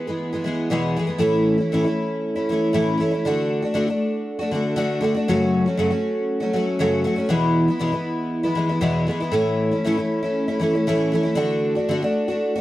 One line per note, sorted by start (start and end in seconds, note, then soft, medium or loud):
0.07 0.34 E3 soft
0.07 0.33 G#3 soft
0.07 0.32 B3 medium
0.07 0.31 G#4 soft
0.33 0.43 E3 soft
0.33 0.44 G#3 soft
0.33 0.45 B3 soft
0.33 0.46 G#4 medium
0.44 0.70 E3 medium
0.44 0.71 G#3 medium
0.44 0.71 B3 medium
0.44 0.72 G#4 medium
0.70 0.96 E2 medium
0.70 0.97 B2 medium
0.70 0.95 E3 medium
0.70 0.96 G#3 medium
0.70 0.97 B3 medium
0.70 0.98 G#4 medium
0.96 1.09 E3 medium
0.96 1.08 G#3 medium
0.96 1.06 B3 medium
0.96 1.06 G#4 medium
1.07 1.18 E3 soft
1.07 1.20 G#3 soft
1.07 1.20 B3 soft
1.07 1.21 G#4 medium
1.18 1.58 A2 medium
1.18 1.59 E3 medium
1.18 1.59 A3 medium
1.18 1.59 C#4 medium
1.18 1.57 E4 medium
1.58 1.72 A3 soft
1.58 1.73 C#4 soft
1.58 1.72 E4 medium
1.72 1.85 A2 medium
1.72 1.85 E3 medium
1.72 1.86 A3 medium
1.72 1.85 C#4 medium
1.72 1.83 E4 medium
1.84 2.38 A3 soft
1.84 2.36 C#4 medium
1.84 2.34 E4 medium
2.36 2.49 A3 soft
2.36 2.49 C#4 medium
2.36 2.49 E4 medium
2.49 2.73 E3 medium
2.49 2.73 A3 medium
2.49 2.73 C#4 medium
2.49 2.74 E4 medium
2.73 2.99 A2 medium
2.73 2.96 E3 medium
2.73 2.99 A3 medium
2.73 3.00 C#4 medium
2.73 3.00 E4 medium
2.98 3.11 E3 medium
2.98 3.12 A3 medium
2.98 3.13 C#4 medium
3.02 3.10 E4 medium
3.11 3.25 A3 soft
3.11 3.25 C#4 soft
3.11 3.24 E4 medium
3.25 3.63 D3 medium
3.25 3.63 A3 medium
3.25 3.64 D4 medium
3.25 3.61 F#4 medium
3.62 3.73 A3 soft
3.62 3.74 D4 soft
3.62 3.75 F#4 medium
3.74 3.87 D3 medium
3.74 3.88 A3 medium
3.74 3.88 D4 medium
3.74 3.86 F#4 medium
3.88 4.40 A3 soft
3.88 4.39 D4 soft
3.88 4.38 F#4 medium
4.39 4.51 A3 soft
4.39 4.53 D4 medium
4.39 4.51 F#4 medium
4.51 4.75 D3 medium
4.51 4.75 A3 medium
4.51 4.76 D4 medium
4.51 4.76 F#4 medium
4.76 4.99 D3 medium
4.76 5.01 A3 medium
4.76 5.02 D4 medium
4.76 5.03 F#4 medium
5.01 5.14 D3 medium
5.01 5.15 A3 medium
5.01 5.15 D4 medium
5.01 5.13 F#4 medium
5.14 5.29 A3 soft
5.14 5.28 D4 medium
5.14 5.27 F#4 medium
5.28 5.66 F#2 medium
5.28 5.66 C#3 medium
5.28 5.66 F#3 medium
5.28 5.67 A3 medium
5.28 5.66 C#4 medium
5.28 5.65 F#4 medium
5.66 5.78 F#3 soft
5.66 5.78 A3 soft
5.66 5.78 C#4 medium
5.66 5.78 F#4 medium
5.77 5.91 F#2 medium
5.77 5.91 C#3 medium
5.77 5.91 F#3 medium
5.77 5.91 A3 medium
5.77 5.90 C#4 medium
5.77 5.89 F#4 medium
5.90 6.42 F#3 soft
5.90 6.42 A3 soft
5.90 6.41 C#4 soft
5.90 6.39 F#4 medium
6.40 6.52 F#3 soft
6.40 6.53 A3 soft
6.40 6.55 C#4 soft
6.40 6.54 F#4 medium
6.53 6.79 F#3 medium
6.53 6.80 A3 medium
6.53 6.79 C#4 medium
6.53 6.80 F#4 medium
6.79 7.05 F#2 medium
6.79 7.05 C#3 medium
6.79 7.03 F#3 medium
6.79 7.03 A3 medium
6.79 7.04 C#4 medium
6.79 7.06 F#4 medium
7.04 7.18 F#3 medium
7.04 7.18 A3 medium
7.04 7.17 C#4 medium
7.04 7.15 F#4 medium
7.16 7.29 F#3 medium
7.16 7.30 A3 soft
7.16 7.30 C#4 medium
7.16 7.30 F#4 medium
7.29 7.68 E2 medium
7.29 7.68 B2 medium
7.29 7.69 E3 medium
7.29 7.69 G#3 medium
7.29 7.69 B3 medium
7.29 7.67 E4 medium
7.68 7.79 E3 soft
7.68 7.80 G#3 soft
7.68 7.80 B3 medium
7.68 7.80 E4 medium
7.79 7.94 E2 medium
7.79 7.94 B2 medium
7.79 7.93 E3 medium
7.79 7.93 G#3 medium
7.79 7.92 B3 medium
7.79 7.91 E4 medium
7.92 8.46 E3 soft
7.92 8.44 G#3 soft
7.92 8.43 B3 soft
7.92 8.42 E4 medium
8.43 8.54 E3 soft
8.43 8.56 G#3 soft
8.43 8.56 B3 medium
8.43 8.57 E4 medium
8.55 8.70 E3 medium
8.55 8.70 G#3 medium
8.55 8.69 B3 medium
8.55 8.68 E4 medium
8.69 8.80 E3 soft
8.69 8.81 G#3 soft
8.69 8.81 B3 soft
8.69 8.82 E4 medium
8.81 9.08 E2 medium
8.81 9.08 B2 medium
8.81 9.05 E3 medium
8.81 9.07 G#3 medium
8.81 9.08 B3 medium
8.81 9.09 E4 medium
9.07 9.21 E3 medium
9.07 9.21 G#3 medium
9.07 9.21 B3 medium
9.11 9.19 E4 medium
9.20 9.31 E3 soft
9.20 9.33 G#3 medium
9.20 9.33 B3 soft
9.20 9.33 E4 medium
9.32 9.72 A2 medium
9.32 9.72 E3 medium
9.32 9.73 A3 medium
9.32 9.71 C#4 medium
9.32 9.70 E4 medium
9.71 9.85 A3 soft
9.71 9.86 C#4 soft
9.71 9.86 E4 soft
9.85 9.98 A2 medium
9.85 9.99 E3 medium
9.85 9.99 A3 medium
9.85 9.97 C#4 medium
9.85 9.96 E4 medium
9.98 10.24 A3 soft
9.98 10.23 C#4 medium
9.98 10.21 E4 medium
10.23 10.49 A3 soft
10.23 10.48 C#4 medium
10.23 10.47 E4 medium
10.48 10.60 A3 soft
10.48 10.61 C#4 medium
10.48 10.62 E4 medium
10.60 10.74 E3 medium
10.60 10.75 A3 medium
10.60 10.74 C#4 medium
10.60 10.72 E4 medium
10.73 10.87 A3 soft
10.73 10.88 C#4 soft
10.73 10.88 E4 soft
10.87 11.14 A2 medium
10.87 11.11 E3 medium
10.87 11.12 A3 medium
10.87 11.13 C#4 loud
10.87 11.14 E4 medium
11.12 11.26 E3 medium
11.12 11.25 A3 medium
11.12 11.24 C#4 medium
11.12 11.22 E4 medium
11.23 11.35 A3 soft
11.23 11.37 C#4 medium
11.23 11.37 E4 medium
11.35 11.77 D3 loud
11.35 11.77 A3 medium
11.35 11.75 D4 medium
11.35 11.74 F#4 medium
11.75 11.88 A3 soft
11.75 11.90 D4 soft
11.75 11.90 F#4 medium
11.89 12.03 D3 medium
11.89 12.03 A3 medium
11.89 12.03 D4 medium
11.89 12.01 F#4 medium
12.02 12.30 A3 soft
12.02 12.29 D4 medium
12.02 12.27 F#4 medium
12.28 12.57 A3 soft
12.28 12.56 D4 medium
12.28 12.54 F#4 medium
12.56 12.61 F#4 medium